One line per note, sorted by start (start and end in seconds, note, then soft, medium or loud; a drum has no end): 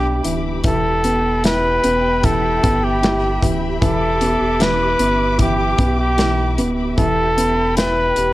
0.00 0.21 B1 medium
0.00 0.23 E3 medium
0.00 0.67 B3 medium
0.00 0.66 D4 medium
0.00 0.22 G4 medium
0.00 0.61 G4 medium
0.00 0.62 E5 medium
0.00 6.94 B5 medium
0.00 0.62 D6 medium
0.25 0.62 D1 medium
0.25 0.63 E3 medium
0.25 closed hi-hat medium
0.64 1.80 E1 loud
0.64 2.22 E3 medium
0.64 8.33 G4 medium
0.64 1.42 A4 medium
0.64 8.33 E5 medium
0.64 3.78 G5 medium
0.64 kick medium
0.64 closed hi-hat medium
1.04 1.82 B3 soft
1.04 closed hi-hat medium
1.44 2.99 E4 medium
1.44 2.26 B4 medium
1.44 snare medium
1.44 closed hi-hat medium
1.84 2.60 E1 loud
1.84 2.62 B3 medium
1.84 closed hi-hat medium
2.24 3.40 E3 medium
2.24 2.85 A4 medium
2.24 kick medium
2.24 closed hi-hat medium
2.63 3.38 G1 loud
2.63 3.78 B3 soft
2.63 kick medium
2.63 closed hi-hat medium
2.84 3.42 G4 medium
3.02 3.79 E4 medium
3.02 snare loud
3.02 closed hi-hat medium
3.42 3.79 D1 medium
3.42 3.80 E3 medium
3.42 kick medium
3.42 closed hi-hat medium
3.81 4.37 E1 loud
3.81 4.58 E3 medium
3.81 4.63 A4 medium
3.81 6.94 D6 medium
3.81 kick medium
3.81 closed hi-hat medium
4.21 4.98 B3 soft
4.21 closed hi-hat medium
4.40 4.96 E1 medium
4.60 5.37 E3 medium
4.60 5.40 B4 loud
4.60 snare loud
4.60 closed hi-hat medium
4.99 5.75 G1 medium
4.99 5.77 B3 soft
4.99 closed hi-hat medium
5.39 6.16 E3 medium
5.39 5.95 G4 medium
5.39 kick medium
5.39 closed hi-hat medium
5.79 6.59 B1 medium
5.79 6.56 B3 medium
5.79 kick medium
5.79 closed hi-hat medium
6.00 6.54 G4 medium
6.18 6.95 E3 medium
6.18 snare loud
6.18 closed hi-hat medium
6.58 6.95 D1 medium
6.58 6.96 B3 medium
6.58 closed hi-hat medium
6.97 8.13 E1 loud
6.97 8.33 E3 medium
6.97 7.74 A4 medium
6.97 8.33 G5 medium
6.97 8.33 B5 medium
6.97 kick medium
6.97 closed hi-hat medium
7.37 8.33 B3 soft
7.37 closed hi-hat medium
7.77 8.33 E4 medium
7.77 8.33 B4 medium
7.77 snare loud
7.77 closed hi-hat medium
8.17 8.33 E1 medium
8.17 8.33 G4 medium
8.17 closed hi-hat medium